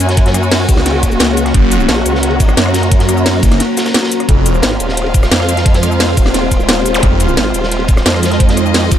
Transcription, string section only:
0, 0, Header, 1, 2, 480
1, 0, Start_track
1, 0, Tempo, 342857
1, 242, Time_signature, 4, 2, 24, 8
1, 12580, End_track
2, 0, Start_track
2, 0, Title_t, "String section"
2, 0, Program_c, 0, 48
2, 0, Note_on_c, 0, 61, 73
2, 0, Note_on_c, 0, 66, 90
2, 0, Note_on_c, 0, 80, 82
2, 2554, Note_on_c, 0, 82, 76
2, 2698, Note_off_c, 0, 80, 0
2, 6001, Note_off_c, 0, 61, 0
2, 6001, Note_on_c, 0, 65, 86
2, 6002, Note_off_c, 0, 66, 0
2, 6240, Note_on_c, 0, 72, 77
2, 6348, Note_on_c, 0, 77, 85
2, 7347, Note_off_c, 0, 82, 0
2, 10768, Note_on_c, 0, 75, 88
2, 10911, Note_off_c, 0, 77, 0
2, 12580, Note_off_c, 0, 65, 0
2, 12580, Note_off_c, 0, 72, 0
2, 12580, Note_off_c, 0, 75, 0
2, 12580, End_track
0, 0, End_of_file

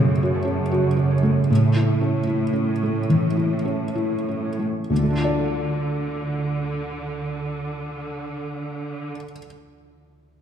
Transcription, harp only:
0, 0, Header, 1, 2, 480
1, 0, Start_track
1, 0, Key_signature, -1, "minor"
1, 0, Tempo, 762389
1, 941, Time_signature, 4, 2, 24, 8
1, 941, Tempo, 800000
1, 1901, Tempo, 873362
1, 2381, Tempo, 937500
1, 2861, Tempo, 884956
1, 3341, Tempo, 875912
1, 5877, End_track
2, 0, Start_track
2, 0, Title_t, "Harp"
2, 0, Program_c, 0, 46
2, 0, Note_on_c, 0, 42, 41
2, 0, Note_on_c, 0, 49, 31
2, 0, Note_on_c, 0, 57, 28
2, 0, Note_on_c, 0, 61, 33
2, 0, Note_on_c, 0, 66, 32
2, 209, Note_off_c, 0, 57, 0
2, 217, Note_on_c, 0, 57, 30
2, 444, Note_off_c, 0, 66, 0
2, 452, Note_on_c, 0, 66, 29
2, 689, Note_off_c, 0, 61, 0
2, 697, Note_on_c, 0, 61, 30
2, 946, Note_on_c, 0, 45, 35
2, 960, Note_off_c, 0, 66, 0
2, 962, Note_off_c, 0, 49, 0
2, 965, Note_off_c, 0, 42, 0
2, 1174, Note_off_c, 0, 57, 0
2, 1181, Note_on_c, 0, 57, 23
2, 1415, Note_on_c, 0, 64, 23
2, 1649, Note_off_c, 0, 61, 0
2, 1656, Note_on_c, 0, 61, 25
2, 1908, Note_on_c, 0, 52, 23
2, 2133, Note_off_c, 0, 57, 0
2, 2140, Note_on_c, 0, 57, 19
2, 2380, Note_off_c, 0, 64, 0
2, 2387, Note_on_c, 0, 64, 21
2, 2620, Note_off_c, 0, 61, 0
2, 2626, Note_on_c, 0, 61, 19
2, 2866, Note_on_c, 0, 50, 21
2, 2881, Note_off_c, 0, 61, 0
2, 2882, Note_off_c, 0, 45, 0
2, 2883, Note_off_c, 0, 52, 0
2, 2883, Note_off_c, 0, 64, 0
2, 2896, Note_off_c, 0, 57, 0
2, 2903, Note_on_c, 0, 57, 22
2, 2941, Note_on_c, 0, 62, 22
2, 2980, Note_on_c, 0, 65, 23
2, 3019, Note_on_c, 0, 74, 22
2, 5162, Note_off_c, 0, 50, 0
2, 5200, Note_off_c, 0, 57, 0
2, 5238, Note_off_c, 0, 62, 0
2, 5277, Note_off_c, 0, 65, 0
2, 5317, Note_off_c, 0, 74, 0
2, 5877, End_track
0, 0, End_of_file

